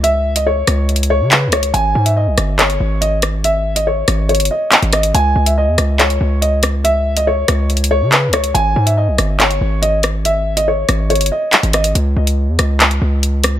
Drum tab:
HH |x-----------------x-----------------x-----------x---x---x---------------x-----------x-----x-----|x-----------------x-----------------x-----------x-----x-----------------x-----------x-----------|x-----------------x-----------------x-----------x--x--x--x--------------x-----x-----x-----x-----|x-----------------x-----------------x-----------x-----x-----------------x-----------x-----------|
CP |------------------------------------------------------------------------x-----------------------|------------------------------------------------x-----------------------------------------------|------------------------------------------------------------------------x-----------------------|------------------------------------------------x-----------------------------------------------|
SD |------------------------------------r-----------------------------------------------r-----------|------------------------------------r-----------------------------------------------r-----------|------------------------------------r-----------------------------------------------r-----------|------------------------------------r-----------------------------------------------r-----------|

HH |x-----------------x-----------------x-----------x---x---x---------------x-----------x-----x-----|x-----------------x-----------------x-----------x-----x-----------------x-----------x-----------|x-----------------x-----------------x-----------x--x--x--x--------------x-----x-----x-----x-----|x-----------------x-----------------x-----------x-----x-----------------x-----------x-----------|
CP |------------------------------------------------------------------------x-----------------------|------------------------------------------------x-----------------------------------------------|------------------------------------------------------------------------x-----------------------|------------------------------------------------x-----------------------------------------------|
SD |------------------------------------r-----------------------------------------------r-----------|------------------------------------r-----------------------------------------------r-----------|------------------------------------r-----------------------------------------------r-----------|------------------------------------r-----------------------------------------------r-----------|